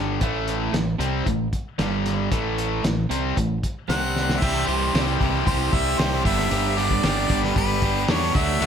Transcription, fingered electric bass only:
0.00 0.18 G1 medium
0.22 0.70 A1 medium
0.73 0.98 A1 medium
0.99 1.24 C2 medium
1.27 1.51 A1 medium
1.79 2.28 G1 medium
2.32 2.80 A1 medium
2.85 3.09 A1 medium
3.10 3.35 C2 medium
3.37 3.61 A1 medium
3.89 4.38 C2 medium
4.42 4.66 C2 medium
4.68 4.92 C2 medium
4.94 5.18 C2 medium
5.21 5.45 C2 medium
5.47 5.71 C2 medium
5.73 5.97 C2 medium
5.99 6.23 C2 medium
6.25 6.49 G1 medium
6.52 7.00 G1 loud
7.04 7.28 G1 medium
7.30 7.54 G1 medium
7.56 8.05 G1 medium
8.08 8.33 E2 medium
8.35 8.59 D2 medium
8.61 8.66 D2 medium

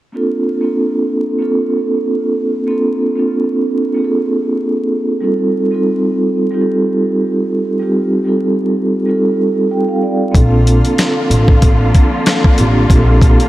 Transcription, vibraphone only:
0.12 0.44 A#3 medium
0.12 0.45 C4 medium
0.12 0.45 D4 medium
0.12 0.46 F4 medium
0.12 0.46 A4 medium
0.61 1.14 A#3 medium
0.61 1.14 C4 medium
0.61 1.15 D4 medium
0.61 1.15 F4 medium
0.61 1.15 A4 medium
1.38 2.26 A#3 medium
1.38 2.26 C4 medium
1.38 2.27 D4 medium
1.38 2.27 F4 medium
1.38 2.28 A4 loud
2.67 2.99 A#3 medium
2.67 3.00 C4 medium
2.67 3.00 D4 medium
2.67 3.01 F4 medium
2.67 3.01 A4 medium
3.16 3.69 A#3 medium
3.16 3.69 C4 medium
3.16 3.70 D4 medium
3.16 3.70 F4 medium
3.16 3.70 A4 medium
3.94 4.81 A#3 medium
3.94 4.82 C4 medium
3.94 4.82 D4 medium
3.94 4.83 F4 medium
3.94 4.04 G#4 medium
4.04 4.86 A4 medium
5.20 5.54 G3 medium
5.20 5.54 C4 medium
5.20 5.55 D#4 medium
5.20 5.55 F4 medium
5.20 5.56 A4 medium
5.71 6.24 G3 medium
5.71 6.24 C4 medium
5.71 6.25 D#4 medium
5.71 6.25 F4 medium
5.71 6.26 A4 medium
6.51 7.37 G3 medium
6.51 7.38 C4 medium
6.51 7.38 D#4 medium
6.51 7.39 F4 medium
6.51 6.60 G4 medium
6.61 7.42 A4 medium
7.79 8.11 G3 medium
7.79 8.11 C4 medium
7.79 8.12 D#4 medium
7.79 8.12 F4 medium
7.79 8.13 G4 medium
8.25 8.78 G3 medium
8.25 8.79 C4 medium
8.25 8.79 D#4 medium
8.25 8.80 F4 medium
8.25 8.80 A4 medium
9.06 9.92 G3 medium
9.06 9.93 C4 medium
9.06 9.93 D#4 medium
9.06 9.94 F4 medium
9.06 9.94 A4 loud
9.71 9.88 G5 medium
9.89 10.02 F5 medium
10.03 10.33 D5 medium
10.31 11.19 A#3 medium
10.31 11.19 C4 medium
10.31 11.20 D4 medium
10.31 11.20 F4 medium
10.31 11.21 A4 medium
12.56 12.79 A#3 medium
12.56 12.80 C4 medium
12.56 12.80 D4 medium
12.56 12.81 F4 medium
12.56 12.81 G4 loud
12.89 13.49 A#3 medium
12.89 13.49 C4 medium
12.89 13.49 D4 medium
12.89 13.49 F4 medium
12.89 13.49 A4 medium

